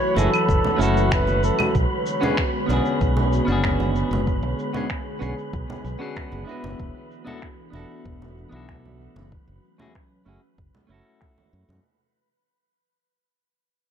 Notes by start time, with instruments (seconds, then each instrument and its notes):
Already playing: analog synth pad E3 F#3 A3 F#4 C#5, synth texture B4 B5, flugelhorn C#5
0.15 fingered electric bass F#1, clean electric guitar A3 C#4 E4 F#4 G#4, flugelhorn A4, high conga, cabasa
0.34 cabasa, claves
0.49 fingered electric bass F#1, kick, cabasa
0.64 high conga
0.76 fingered electric bass F#1, clean electric guitar A3 C#4 E4
0.81 flugelhorn F#4, clean electric guitar F#4 A4, cabasa
0.97 cabasa
1.11 flugelhorn B4, finger snap, kick, high conga, cabasa
1.27 low conga, cabasa
1.44 flugelhorn A4, cabasa
1.59 high conga, cabasa, claves
1.74 fingered electric bass B1, analog synth pad D3 G#3 B3, kick, cabasa
2.06 cabasa
2.21 clean electric guitar B3 C#4 D4 G#4, high conga, cabasa
2.37 finger snap, kick, cabasa
2.66 fingered electric bass B1, clean electric guitar B3 C#4 D4, high conga, cabasa
2.71 clean electric guitar F#4 G#4
2.85 cabasa
3.01 fingered electric bass B1, kick, cabasa
3.17 high conga
3.33 cabasa
3.45 fingered electric bass F#1, clean electric guitar B3 C#4 D4, cabasa
3.50 clean electric guitar F#4 G#4
3.64 finger snap, kick, high conga, cabasa
3.80 low conga, cabasa
3.96 cabasa
4.11 fingered electric bass F#1, high conga, cabasa
4.27 analog synth pad G#4, kick, cabasa
4.43 fingered electric bass B1
4.59 cabasa
4.73 clean electric guitar B3 C#4 D4 G#4, high conga, cabasa
4.90 finger snap, kick, cabasa
5.19 fingered electric bass B1, clean electric guitar B3 C#4 D4 G#4, cabasa
5.38 cabasa
5.53 fingered electric bass B1, kick, cabasa
5.70 high conga
5.84 fingered electric bass B1, cabasa
5.99 clean electric guitar B3 C#4 D4 F#4 G#4, cabasa
6.17 finger snap, kick, high conga, cabasa
6.32 fingered electric bass F#1, low conga, cabasa
6.44 clean electric guitar B3 D4 E4
6.49 clean electric guitar F#4 B4, cabasa
6.64 fingered electric bass F#1, high conga, cabasa
6.80 fingered electric bass E1, analog synth pad E3 A3 D4 F#4, kick, cabasa
7.11 cabasa
7.25 clean electric guitar B3 D4 E4 F#4 A4, high conga, cabasa
7.42 finger snap, kick, cabasa
7.70 fingered electric bass E1, clean electric guitar B3 D4 E4, high conga
7.74 clean electric guitar F#4 A4, cabasa
7.90 cabasa
8.05 fingered electric bass E1, kick
8.22 high conga
8.38 cabasa
8.49 fingered electric bass B1, clean electric guitar B3 D4 E4
8.55 clean electric guitar F#4 A4
8.69 finger snap, kick, high conga
8.85 low conga
9.01 cabasa
9.16 fingered electric bass F#1, high conga
9.32 analog synth pad F#3 C#4, kick
9.47 fingered electric bass F#1
9.64 cabasa
9.78 clean electric guitar A3 C#4 E4 F#4 G#4, high conga
9.95 finger snap, kick
10.25 fingered electric bass F#1, clean electric guitar A3 C#4 E4 F#4 G#4
10.58 fingered electric bass F#1, kick
10.75 high conga
10.87 fingered electric bass F#1, clean electric guitar A3 C#4 E4
10.92 clean electric guitar F#4 A4
11.21 finger snap, kick, high conga
11.38 low conga
11.53 fingered electric bass F#2
11.69 fingered electric bass F#2, high conga